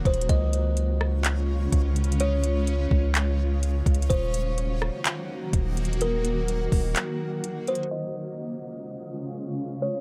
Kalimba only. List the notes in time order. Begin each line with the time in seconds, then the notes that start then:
0.06 C5
0.29 D#5
2.21 C#5
4.10 C5
6.02 A#4
7.68 C5
7.91 D#5
9.82 C#5